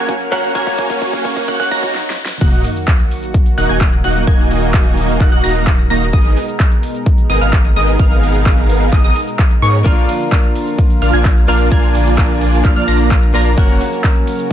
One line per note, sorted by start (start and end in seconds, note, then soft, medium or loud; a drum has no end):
0.00 1.92 C#3 medium
0.00 0.12 A#3 medium
0.00 0.29 A#3 medium
0.00 1.92 A#3 medium
0.00 0.12 C#4 medium
0.00 0.29 C#4 medium
0.00 0.12 F#4 medium
0.00 0.30 F#4 medium
0.00 0.54 F#4 medium
0.00 0.30 A#4 loud
0.00 1.92 A#4 medium
0.00 0.12 C#5 medium
0.00 0.12 G#5 medium
0.00 0.12 G#6 medium
0.00 riser medium
0.09 kick loud
0.09 closed hi-hat medium
0.09 shaker medium
0.20 closed hi-hat soft
0.20 shaker soft
0.31 0.52 A#3 medium
0.31 0.52 C#4 medium
0.31 0.52 F#4 medium
0.31 0.53 F#4 medium
0.31 0.53 A#4 medium
0.31 0.52 C#5 medium
0.31 0.52 F#5 loud
0.31 0.52 F#6 loud
0.31 kick loud
0.31 open hi-hat medium
0.44 closed hi-hat soft
0.44 shaker medium
0.54 1.94 A#3 medium
0.54 1.45 A#3 medium
0.54 1.95 C#4 medium
0.54 1.45 C#4 medium
0.54 1.45 F#4 medium
0.54 1.95 F#4 medium
0.54 1.96 A#4 loud
0.54 1.45 C#5 medium
0.54 1.93 F5 medium
0.54 1.45 G#5 loud
0.54 1.46 G#6 loud
0.54 kick loud
0.54 closed hi-hat medium
0.54 shaker medium
0.67 kick medium
0.67 closed hi-hat soft
0.67 shaker soft
0.78 kick loud
0.78 open hi-hat loud
0.90 kick loud
0.90 closed hi-hat soft
0.90 shaker medium
1.02 kick loud
1.02 closed hi-hat medium
1.02 shaker medium
1.13 kick medium
1.13 closed hi-hat soft
1.13 shaker soft
1.25 kick loud
1.25 open hi-hat medium
1.37 kick medium
1.37 closed hi-hat soft
1.37 shaker medium
1.48 1.57 A#3 medium
1.48 1.57 C#4 medium
1.48 1.57 F#4 medium
1.48 1.57 C#5 medium
1.48 1.57 F#5 medium
1.48 1.57 F#6 medium
1.48 kick loud
1.48 closed hi-hat medium
1.48 swell medium
1.48 shaker medium
1.60 1.69 A#3 loud
1.60 1.69 C#4 medium
1.60 1.69 F#4 medium
1.60 1.69 C#5 medium
1.60 1.69 F#5 loud
1.60 1.69 F#6 loud
1.60 kick medium
1.60 closed hi-hat soft
1.60 shaker soft
1.71 1.95 A#3 medium
1.71 1.95 C#4 medium
1.71 1.95 F#4 medium
1.71 1.95 C#5 medium
1.71 1.95 A#5 medium
1.71 1.95 A#6 loud
1.71 kick loud
1.71 open hi-hat loud
1.83 kick loud
1.83 closed hi-hat soft
1.83 shaker medium
1.95 snare medium
2.10 snare medium
2.26 snare loud
2.41 2.63 D#1 medium
2.41 6.10 D#3 medium
2.41 6.10 F#3 medium
2.41 2.66 A#3 medium
2.41 6.10 A#3 medium
2.41 2.65 D#4 medium
2.41 2.66 F#4 medium
2.41 4.26 F#4 medium
2.41 2.66 D#5 medium
2.41 2.66 F#5 medium
2.41 2.66 F#6 medium
2.41 kick loud
2.41 closed hi-hat medium
2.41 crash loud
2.41 sub drop medium
2.41 shaker medium
2.53 closed hi-hat soft
2.53 shaker soft
2.64 open hi-hat loud
2.76 closed hi-hat soft
2.76 shaker medium
2.88 kick loud
2.88 clap loud
2.88 closed hi-hat medium
2.88 shaker medium
2.99 closed hi-hat soft
2.99 shaker soft
3.11 open hi-hat medium
3.23 closed hi-hat soft
3.23 shaker medium
3.34 kick loud
3.34 closed hi-hat medium
3.34 shaker medium
3.46 closed hi-hat soft
3.46 shaker soft
3.58 3.67 D#1 loud
3.58 3.68 A#3 medium
3.58 3.68 D#4 medium
3.58 3.68 F#4 medium
3.58 3.68 D#5 medium
3.58 3.67 F#5 medium
3.58 3.68 F#6 medium
3.58 open hi-hat loud
3.69 4.02 D#1 loud
3.69 3.84 A#3 medium
3.69 3.84 D#4 medium
3.69 3.84 F#4 medium
3.69 3.84 D#5 medium
3.69 3.84 G#5 medium
3.69 3.84 G#6 loud
3.69 closed hi-hat soft
3.69 shaker medium
3.81 kick loud
3.81 clap loud
3.81 closed hi-hat medium
3.81 shaker medium
3.93 closed hi-hat soft
3.93 shaker soft
4.04 4.25 D#1 loud
4.04 4.24 A#3 medium
4.04 4.24 D#4 medium
4.04 4.24 F#4 medium
4.04 4.24 D#5 medium
4.04 4.24 F#5 loud
4.04 4.24 F#6 loud
4.04 open hi-hat medium
4.16 closed hi-hat soft
4.16 shaker medium
4.27 5.18 D#1 loud
4.27 5.18 A#3 loud
4.27 5.18 D#4 medium
4.27 5.18 F#4 medium
4.27 5.18 D#5 medium
4.27 6.12 F5 medium
4.27 5.18 G#6 loud
4.27 kick loud
4.27 closed hi-hat medium
4.27 shaker medium
4.39 closed hi-hat soft
4.39 shaker soft
4.51 open hi-hat loud
4.62 closed hi-hat soft
4.62 shaker medium
4.74 kick loud
4.74 clap loud
4.74 closed hi-hat medium
4.74 shaker medium
4.86 closed hi-hat soft
4.86 shaker soft
4.97 open hi-hat medium
5.09 closed hi-hat soft
5.09 shaker medium
5.20 5.30 D#1 loud
5.20 5.29 A#3 medium
5.20 5.29 D#4 medium
5.20 5.29 F#4 medium
5.20 5.29 D#5 medium
5.20 5.29 F#5 medium
5.20 5.29 F#6 medium
5.20 kick loud
5.20 clap medium
5.20 closed hi-hat medium
5.20 shaker medium
5.32 5.41 D#1 medium
5.32 5.41 A#3 loud
5.32 5.41 D#4 medium
5.32 5.41 F#4 medium
5.32 5.41 D#5 medium
5.32 5.41 F#5 loud
5.32 5.41 F#6 loud
5.32 closed hi-hat soft
5.32 shaker soft
5.43 5.88 D#1 loud
5.43 5.68 A#3 medium
5.43 5.68 D#4 medium
5.43 5.68 F#4 medium
5.43 5.68 D#5 medium
5.43 5.68 A#5 medium
5.43 5.68 A#6 medium
5.43 open hi-hat loud
5.55 closed hi-hat soft
5.55 shaker medium
5.67 kick loud
5.67 clap loud
5.67 closed hi-hat medium
5.67 shaker medium
5.79 closed hi-hat soft
5.79 shaker soft
5.90 6.11 D#1 medium
5.90 6.05 A#3 loud
5.90 6.05 D#4 medium
5.90 6.05 F#4 medium
5.90 6.05 D#5 medium
5.90 6.05 A#5 loud
5.90 6.05 A#6 loud
5.90 open hi-hat medium
6.02 closed hi-hat soft
6.02 shaker medium
6.13 6.35 G#1 loud
6.13 9.82 B2 medium
6.13 9.82 G#3 medium
6.13 6.38 B3 medium
6.13 6.38 D#4 medium
6.13 9.82 D#4 medium
6.13 6.38 G#4 medium
6.13 6.38 A#4 medium
6.13 14.53 A#4 medium
6.13 6.38 D#5 medium
6.13 6.38 D#6 medium
6.13 kick loud
6.13 closed hi-hat medium
6.13 shaker medium
6.25 closed hi-hat soft
6.25 shaker soft
6.37 open hi-hat loud
6.48 closed hi-hat soft
6.48 shaker medium
6.60 kick loud
6.60 clap loud
6.60 closed hi-hat medium
6.60 shaker medium
6.72 closed hi-hat soft
6.72 shaker soft
6.83 open hi-hat loud
6.95 closed hi-hat soft
6.95 shaker medium
7.06 kick loud
7.06 closed hi-hat medium
7.06 shaker medium
7.18 closed hi-hat soft
7.18 shaker soft
7.30 7.39 G#1 loud
7.30 7.40 B3 medium
7.30 7.40 D#4 medium
7.30 7.40 G#4 medium
7.30 7.40 A#4 medium
7.30 7.40 D#5 medium
7.30 7.40 D#6 medium
7.30 open hi-hat loud
7.41 7.74 G#1 loud
7.41 7.56 B3 medium
7.41 7.56 D#4 medium
7.41 7.56 G#4 medium
7.41 7.56 A#4 medium
7.41 7.56 F5 loud
7.41 7.57 F6 medium
7.41 closed hi-hat soft
7.41 shaker medium
7.53 kick loud
7.53 clap loud
7.53 closed hi-hat medium
7.53 shaker medium
7.65 closed hi-hat soft
7.65 shaker soft
7.76 7.97 G#1 loud
7.76 7.96 B3 medium
7.76 7.96 D#4 medium
7.76 7.96 G#4 medium
7.76 7.96 A#4 medium
7.76 7.96 D#5 loud
7.76 7.96 D#6 loud
7.76 open hi-hat loud
7.88 closed hi-hat soft
7.88 shaker medium
7.99 8.90 G#1 loud
7.99 8.90 B3 medium
7.99 8.90 D#4 medium
7.99 8.90 G#4 medium
7.99 8.90 F6 loud
7.99 kick loud
7.99 closed hi-hat medium
7.99 shaker medium
8.11 closed hi-hat soft
8.11 shaker soft
8.23 open hi-hat loud
8.35 closed hi-hat soft
8.35 shaker medium
8.46 kick loud
8.46 clap loud
8.46 closed hi-hat medium
8.46 shaker medium
8.58 closed hi-hat soft
8.58 shaker soft
8.69 open hi-hat loud
8.81 closed hi-hat soft
8.81 shaker medium
8.93 9.02 G#1 loud
8.93 9.01 B3 medium
8.93 9.01 D#4 medium
8.93 9.01 G#4 medium
8.93 9.01 A#4 medium
8.93 9.01 D#5 medium
8.93 9.01 D#6 medium
8.93 kick loud
8.93 clap medium
8.93 closed hi-hat medium
8.93 shaker medium
9.04 9.11 G#1 loud
9.04 9.13 B3 loud
9.04 9.13 D#4 medium
9.04 9.13 G#4 medium
9.04 9.13 A#4 medium
9.04 9.13 D#5 loud
9.04 9.13 D#6 loud
9.04 closed hi-hat soft
9.04 shaker soft
9.16 open hi-hat loud
9.28 closed hi-hat soft
9.28 shaker medium
9.39 kick loud
9.39 clap loud
9.39 closed hi-hat medium
9.39 shaker medium
9.51 closed hi-hat soft
9.51 shaker soft
9.62 9.83 G#2 loud
9.62 9.78 B3 medium
9.62 9.78 D#4 medium
9.62 9.78 G#4 medium
9.62 9.78 A#4 medium
9.62 9.78 C#5 medium
9.62 9.78 C#6 medium
9.62 open hi-hat loud
9.74 closed hi-hat soft
9.74 shaker medium
9.84 10.08 A#1 loud
9.84 13.54 D3 medium
9.84 13.54 F3 medium
9.84 11.45 A#3 medium
9.84 10.10 A#3 medium
9.84 11.45 D4 medium
9.84 10.10 D4 medium
9.84 13.54 F4 medium
9.84 10.10 F4 medium
9.84 11.46 F4 medium
9.84 11.46 A#4 loud
9.84 10.10 D5 medium
9.84 10.10 F5 medium
9.84 10.10 F6 medium
9.84 kick loud
9.84 closed hi-hat medium
9.84 ride medium
9.84 shaker medium
9.97 closed hi-hat soft
9.97 shaker soft
10.09 open hi-hat loud
10.09 ride medium
10.21 closed hi-hat soft
10.21 shaker medium
10.32 kick loud
10.32 clap loud
10.32 closed hi-hat medium
10.32 ride medium
10.32 shaker medium
10.44 closed hi-hat soft
10.44 shaker soft
10.55 open hi-hat medium
10.55 ride medium
10.67 closed hi-hat soft
10.67 shaker medium
10.79 kick loud
10.79 closed hi-hat medium
10.79 ride medium
10.79 shaker medium
10.90 closed hi-hat soft
10.90 shaker soft
11.02 11.11 A#1 loud
11.02 11.12 A#3 medium
11.02 11.12 D4 medium
11.02 11.12 F4 medium
11.02 11.12 D5 medium
11.02 11.12 F5 medium
11.02 11.12 F6 medium
11.02 open hi-hat loud
11.02 ride medium
11.13 11.46 A#1 loud
11.13 11.29 A#3 medium
11.13 11.29 D4 medium
11.13 11.29 F4 medium
11.13 11.29 D5 medium
11.13 11.29 G#5 loud
11.13 11.29 G#6 loud
11.13 closed hi-hat soft
11.13 shaker medium
11.25 kick loud
11.25 clap loud
11.25 closed hi-hat medium
11.25 ride medium
11.25 shaker medium
11.37 closed hi-hat soft
11.37 shaker soft
11.48 11.69 A#1 loud
11.48 11.69 A#3 medium
11.48 11.68 A#3 medium
11.48 11.69 D4 medium
11.48 11.68 D4 medium
11.48 11.68 F4 medium
11.48 11.69 F4 medium
11.48 11.69 A#4 medium
11.48 11.68 D5 medium
11.48 11.68 F5 medium
11.48 11.68 F6 loud
11.48 open hi-hat loud
11.48 ride medium
11.60 closed hi-hat soft
11.60 shaker medium
11.70 12.62 A#1 loud
11.70 13.31 A#3 medium
11.70 12.62 A#3 loud
11.70 13.31 D4 medium
11.70 12.62 D4 medium
11.70 12.62 F4 medium
11.70 13.32 F4 medium
11.70 13.32 A#4 loud
11.70 12.62 D5 medium
11.70 12.62 G#5 loud
11.70 12.62 G#6 loud
11.70 kick loud
11.70 closed hi-hat medium
11.70 ride medium
11.70 shaker medium
11.83 closed hi-hat soft
11.83 shaker soft
11.95 open hi-hat loud
11.95 ride medium
12.07 closed hi-hat soft
12.07 shaker medium
12.18 kick loud
12.18 clap loud
12.18 closed hi-hat medium
12.18 ride medium
12.18 shaker medium
12.30 closed hi-hat soft
12.30 shaker soft
12.41 open hi-hat medium
12.41 ride medium
12.53 closed hi-hat soft
12.53 shaker medium
12.65 12.74 A#1 loud
12.65 12.73 A#3 medium
12.65 12.73 D4 medium
12.65 12.73 F4 medium
12.65 12.73 D5 medium
12.65 12.73 F5 medium
12.65 12.74 F6 medium
12.65 kick loud
12.65 clap medium
12.65 closed hi-hat medium
12.65 ride medium
12.65 shaker medium
12.76 12.86 A#1 loud
12.76 12.85 A#3 loud
12.76 12.85 D4 medium
12.76 12.85 F4 medium
12.76 12.85 D5 medium
12.76 12.85 F5 loud
12.76 12.85 F6 loud
12.76 closed hi-hat soft
12.76 shaker soft
12.88 13.32 A#1 loud
12.88 13.12 A#3 medium
12.88 13.12 D4 medium
12.88 13.12 F4 medium
12.88 13.12 D5 medium
12.88 13.12 A#5 medium
12.88 13.12 A#6 loud
12.88 open hi-hat loud
12.88 ride medium
13.00 closed hi-hat soft
13.00 shaker medium
13.11 kick loud
13.11 clap loud
13.11 closed hi-hat medium
13.11 ride medium
13.11 shaker medium
13.23 closed hi-hat soft
13.23 shaker soft
13.34 13.55 A#1 medium
13.34 13.55 A#3 medium
13.34 13.50 A#3 loud
13.34 13.50 D4 medium
13.34 13.55 D4 medium
13.34 13.50 F4 medium
13.34 13.55 F4 medium
13.34 13.55 A#4 medium
13.34 13.50 D5 medium
13.34 13.50 A#5 loud
13.34 13.50 A#6 loud
13.34 open hi-hat medium
13.34 ride medium
13.46 closed hi-hat soft
13.46 shaker medium
13.57 13.80 F#1 loud
13.57 14.53 C#3 medium
13.57 14.53 F#3 medium
13.57 14.53 A#3 medium
13.57 13.82 A#3 medium
13.57 14.53 C#4 medium
13.57 13.82 C#4 medium
13.57 13.82 F#4 medium
13.57 14.53 F#4 medium
13.57 14.53 A#4 loud
13.57 13.82 C#5 medium
13.57 13.82 F#5 loud
13.57 13.82 F#6 medium
13.57 kick loud
13.57 closed hi-hat medium
13.57 ride medium
13.57 shaker medium
13.69 closed hi-hat soft
13.69 shaker soft
13.81 open hi-hat loud
13.81 ride medium
13.92 closed hi-hat soft
13.92 shaker medium
14.04 kick loud
14.04 clap loud
14.04 closed hi-hat medium
14.04 ride medium
14.04 shaker medium
14.16 closed hi-hat soft
14.16 shaker soft
14.27 open hi-hat medium
14.27 ride medium
14.39 closed hi-hat soft
14.39 shaker medium